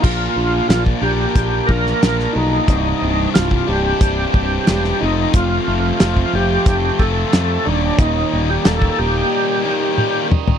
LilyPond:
<<
  \new Staff \with { instrumentName = "Tonewheel organ" } { \time 4/4 \key bes \major \tempo 4 = 90 f'4 f'8 g'4 bes'4 ees'8~ | ees'4 f'8 g'2 ees'8 | f'4 f'8 g'4 a'4 d'8 | ees'8. g'16 a'8 g'2 r8 | }
  \new Staff \with { instrumentName = "Overdriven electric guitar" } { \clef bass \time 4/4 \key bes \major bes,8 d'8 f'8 bes'8 d'8 bes8 d'8 bes'8 | c,8 c8 g8 d'8 c8 g,8 c8 f,8 | f,8 a8 c'8 f'8 a8 f8 a8 ees,8 | ees,8 g8 bes8 ees'8 g8 ees8 g8 ees'8 | }
  \new Staff \with { instrumentName = "Distorted electric guitar" } { \clef bass \time 4/4 \key bes \major <bes, f bes d' f' bes'>4. <bes, f bes d' f' bes'>4. <bes, f bes d' f' bes'>4 | <c, g, c g d'>4. <c, g, c g d'>4. <c, g, c g d'>8 <f, c f a c' f'>8~ | <f, c f a c' f'>4 <f, c f a c' f'>4. <f, c f a c' f'>4 <ees, bes, ees g bes ees'>8~ | <ees, bes, ees g bes ees'>4 <ees, bes, ees g bes ees'>4. <ees, bes, ees g bes ees'>4 r8 | }
  \new Staff \with { instrumentName = "Fingered electric bass" } { \clef bass \time 4/4 \key bes \major bes,,8 bes,,8 bes,,8 bes,,8 bes,,8 bes,,8 bes,,8 b,,8 | c,,8 c,,8 c,,8 c,,8 c,,8 c,,8 e,,8 f,,8 | f,,8 f,,8 f,,8 f,,8 f,,8 f,,8 f,8 ees,,8 | ees,,8 ees,,8 ees,,8 ees,,8 r2 | }
  \new DrumStaff \with { instrumentName = "Drums" } \drummode { \time 4/4 <cymc bd>4 <hh sn>16 bd8. <hh bd>8 bd16 sn16 <hh sn>16 sn8. | <hh bd>4 <hh sn>16 bd8. <hh bd>8 bd8 <hh sn>16 sn8. | <hh bd>4 <hh sn>16 bd8. <hh bd>8 bd8 <hh sn>4 | <hh bd>4 <hh sn>16 bd8. r4 tommh8 toml16 tomfh16 | }
>>